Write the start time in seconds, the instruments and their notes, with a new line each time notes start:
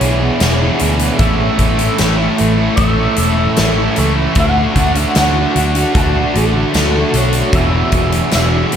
Already playing: distorted electric guitar E2 B2 E3, analog synth pad G#4 E5 F#5, clean electric guitar C#5
0.00 picked electric bass B1, distorted electric guitar E2 B2 E3, overdriven electric guitar E3 B3 D4 G#4, closed hi-hat
0.20 overdriven electric guitar B3 D4 G#4, muted distorted electric guitar stroke
0.39 picked electric bass E1, distorted electric guitar E2, overdriven electric guitar E3 B3 D4 G#4, snare, closed hi-hat, tambourine
0.43 distorted electric guitar B2 E3
0.58 distorted electric guitar E3, overdriven electric guitar B3 D4 G#4
0.65 distorted electric guitar B2
0.79 picked electric bass D2, distorted electric guitar E2, overdriven electric guitar E3 B3 D4 G#4, closed hi-hat
0.83 distorted electric guitar B2 E3
0.97 overdriven electric guitar B3 D4 G#4, closed hi-hat
1.18 picked electric bass A1, overdriven electric guitar A2 E3 A3 C#4 E4, distorted electric guitar A2 E3, analog synth pad A4 C#6, clean electric guitar E5, kick, closed hi-hat
1.23 distorted electric guitar A3
1.57 picked electric bass A1, overdriven electric guitar E3 A3 C#4 E4, kick, closed hi-hat
1.78 distorted electric guitar E3 A3, closed hi-hat
1.97 picked electric bass A1, overdriven electric guitar A2 E3 A3 C#4 E4, distorted electric guitar A2 E3, snare, closed hi-hat, tambourine
2.02 distorted electric guitar A3
2.17 overdriven electric guitar A3 C#4 E4
2.37 picked electric bass A1, distorted electric guitar A2 E3 A3, muted overdriven electric guitar stroke, closed hi-hat
2.57 overdriven electric guitar A3 C#4 E4, muted distorted electric guitar stroke
2.76 picked electric bass A1, distorted electric guitar A2 E3 A3, clean electric guitar E5, kick, closed hi-hat
2.97 distorted electric guitar E3 A3
3.16 picked electric bass E1, distorted electric guitar A2 E3, overdriven electric guitar E3 A3 C#4 E4, closed hi-hat
3.21 distorted electric guitar A3
3.37 overdriven electric guitar A3 C#4 E4, muted distorted electric guitar stroke
3.56 picked electric bass A1, distorted electric guitar A2 E3 A3, overdriven electric guitar A2 E3 A3 C#4 E4, snare, closed hi-hat, tambourine
3.76 distorted electric guitar E3 A3, overdriven electric guitar A3 C#4 E4
3.95 picked electric bass C#2, distorted electric guitar A2 E3 A3, overdriven electric guitar E3 A3, closed hi-hat
3.99 overdriven electric guitar C#4 E4
4.17 overdriven electric guitar A3 C#4 E4
4.34 picked electric bass D2, distorted electric guitar D3 A3, overdriven electric guitar D3, kick, closed hi-hat
4.38 overdriven electric guitar A3 D4 F#4, distorted electric guitar D4, analog synth pad F#4, clean electric guitar F#5
4.76 picked electric bass D2, overdriven electric guitar D3 A3 D4 F#4, kick, closed hi-hat
4.94 distorted electric guitar A3 D4, closed hi-hat
4.99 clean electric guitar E5
5.15 picked electric bass D2, distorted electric guitar D3 A3 D4, overdriven electric guitar D3 A3 D4, snare, closed hi-hat, tambourine
5.19 overdriven electric guitar F#4, clean electric guitar F#5
5.36 overdriven electric guitar A3 D4 F#4
5.54 picked electric bass D2, distorted electric guitar D3 A3 D4, muted overdriven electric guitar stroke, closed hi-hat
5.75 overdriven electric guitar A3 D4 F#4, muted distorted electric guitar stroke, closed hi-hat
5.94 picked electric bass D2, distorted electric guitar D3 A3 D4, clean electric guitar A5, kick, closed hi-hat
6.14 distorted electric guitar A3 D4
6.34 picked electric bass A1, distorted electric guitar D3 A3 D4, overdriven electric guitar D3 A3 D4, clean electric guitar A4, closed hi-hat
6.38 overdriven electric guitar F#4
6.54 overdriven electric guitar A3 D4 F#4, muted distorted electric guitar stroke
6.74 picked electric bass D2, distorted electric guitar D3 A3 D4, overdriven electric guitar D3 A3, snare, closed hi-hat, tambourine
6.78 overdriven electric guitar D4 F#4
6.92 distorted electric guitar A3 D4, overdriven electric guitar F#4
6.98 overdriven electric guitar A3 D4
7.11 picked electric bass B1, distorted electric guitar D3 A3 D4, closed hi-hat
7.15 overdriven electric guitar D3 A3 D4 F#4, clean electric guitar C#5
7.33 overdriven electric guitar D4 F#4, closed hi-hat
7.37 overdriven electric guitar A3
7.50 picked electric bass E1, distorted electric guitar E2 B2 E3, analog synth pad F#4 E5 D6, kick, closed hi-hat
7.55 overdriven electric guitar E3 B3 D4 G#4, clean electric guitar E5
7.92 picked electric bass E1, overdriven electric guitar E3, kick, closed hi-hat
7.97 overdriven electric guitar B3 D4 G#4
8.11 distorted electric guitar B2 E3, closed hi-hat
8.30 distorted electric guitar E2 B2 E3, snare, closed hi-hat, tambourine
8.35 picked electric bass E1, overdriven electric guitar E3 B3 D4 G#4, clean electric guitar E5
8.53 overdriven electric guitar B3 D4 G#4
8.70 distorted electric guitar E2 B2 E3, closed hi-hat